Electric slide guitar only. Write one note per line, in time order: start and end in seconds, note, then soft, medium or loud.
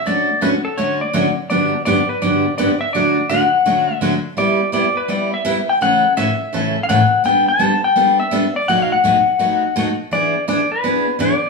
0.07 0.44 D5 medium
0.42 0.49 B4 medium
0.65 0.78 A4 medium
0.77 1.02 C#5 medium
1.01 1.35 D5 medium
1.50 1.84 D5 medium
1.85 2.07 D5 medium
2.09 2.21 B4 medium
2.22 2.55 D5 medium
2.58 2.80 D5 medium
2.81 2.93 E5 medium
2.93 3.30 D5 medium
3.30 3.95 F#5 medium
3.95 4.21 E5 medium
4.38 4.71 D5 medium
4.74 4.97 D5 medium
4.97 5.10 B4 medium
5.10 5.33 D5 medium
5.34 5.70 E5 loud
5.69 5.74 G5 loud
5.82 6.17 F#5 loud
6.17 6.83 E5 loud
6.83 6.88 F5 medium
6.89 7.22 F#5 medium
7.26 7.47 G5 loud
7.48 7.84 A5 loud
7.84 8.17 G5 loud
8.20 8.56 E5 loud
8.56 8.68 D5 medium
8.68 8.82 F#5 loud
8.82 8.91 F5 medium
8.92 9.96 F#5 loud
10.13 10.46 D5 loud
10.49 10.70 D5 medium
10.72 11.17 B4 medium
11.21 11.49 D5 medium